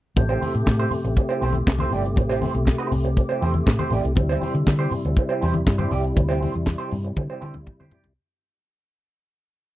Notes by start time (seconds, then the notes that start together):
0.16 A1 C3 A3 G4, muted clean electric guitar stroke, kick, closed hi-hat, muted conga, low conga
0.29 E4 G4 C5, closed hi-hat
0.41 E4 G4 C5, open hi-hat, high conga
0.54 A2, muted clean electric guitar stroke, closed hi-hat
0.66 A2, muted clean electric guitar stroke, kick, snare, clap, muted conga
0.79 E4 G4 C5, closed hi-hat
0.91 muted clean electric guitar stroke, open hi-hat, muted conga, low conga
1.04 A1, muted clean electric guitar stroke, closed hi-hat
1.16 muted clean electric guitar stroke, kick, closed hi-hat, muted conga
1.29 E4 G4 C5, closed hi-hat
1.41 B1 E4 G4 C5, open hi-hat
1.53 muted clean electric guitar stroke, closed hi-hat, high conga
1.66 C2, muted clean electric guitar stroke, kick, snare, clap
1.78 E4 G4 C5, closed hi-hat, high conga
1.90 G1 E4 G4 D5, open hi-hat, low conga
2.04 muted clean electric guitar stroke, closed hi-hat
2.16 A1, muted clean electric guitar stroke, kick, closed hi-hat, low conga
2.29 E4 G4 C5, snare, closed hi-hat
2.41 E4 G4 C5, open hi-hat, muted conga, high conga
2.53 B1, muted clean electric guitar stroke, closed hi-hat
2.65 muted clean electric guitar stroke, kick, snare, clap, muted conga
2.78 E4 G4 C5, closed hi-hat
2.91 C2, muted clean electric guitar stroke, open hi-hat, muted conga, low conga
3.05 muted clean electric guitar stroke, closed hi-hat
3.17 muted clean electric guitar stroke, kick, closed hi-hat, muted conga
3.29 E4 G4 C5, closed hi-hat
3.41 E2 E4 G4 C5, open hi-hat, muted conga
3.54 muted clean electric guitar stroke, closed hi-hat, high conga
3.66 A2, muted clean electric guitar stroke, kick, snare, clap, muted conga
3.79 E4 G4 C5, closed hi-hat, high conga
3.90 A1 E4 G4 D5, open hi-hat, muted conga, low conga
4.04 C2, muted clean electric guitar stroke, closed hi-hat
4.16 D2 G3 E4, muted clean electric guitar stroke, kick, closed hi-hat, muted conga, low conga
4.29 E4 G4 C5, snare, closed hi-hat
4.41 E4 G4 C5, open hi-hat, high conga
4.54 D3, muted clean electric guitar stroke, closed hi-hat
4.67 D3, muted clean electric guitar stroke, kick, snare, clap
4.79 E4 G4 C5, closed hi-hat
4.91 muted clean electric guitar stroke, open hi-hat, low conga
5.05 D2, muted clean electric guitar stroke, closed hi-hat
5.16 muted clean electric guitar stroke, kick, closed hi-hat, muted conga
5.29 E4 G4 C5, closed hi-hat
5.42 E2 E4 G4 C5, open hi-hat, muted conga
5.54 muted clean electric guitar stroke, closed hi-hat, high conga
5.67 G2, muted clean electric guitar stroke, kick, snare, clap
5.78 E4 G4 C5, closed hi-hat, high conga
5.90 C2 E4 G4 D5, open hi-hat, low conga
6.03 muted clean electric guitar stroke, closed hi-hat
6.16 D2, muted clean electric guitar stroke, kick, closed hi-hat, low conga
6.29 E4 G4 C5, snare, closed hi-hat
6.41 E4 G4 C5, open hi-hat, high conga
6.53 E2, muted clean electric guitar stroke, closed hi-hat
6.66 muted clean electric guitar stroke, kick, snare, clap, muted conga
6.78 E4 G4 C5, closed hi-hat
6.91 G2, muted clean electric guitar stroke, open hi-hat, high conga, low conga
7.04 muted clean electric guitar stroke, closed hi-hat
7.16 D3, muted clean electric guitar stroke, kick, high tom
7.30 E4 G4 C5
7.41 D3 E4 G4 C5, mid tom, muted conga
7.54 D2, muted clean electric guitar stroke, mid tom, high conga
7.67 muted clean electric guitar stroke, kick, mid tom, muted conga
7.80 D3 E4 G4 C5, high conga
7.91 E4 G4 D5, floor tom, muted conga, low conga
8.04 C2, muted clean electric guitar stroke, floor tom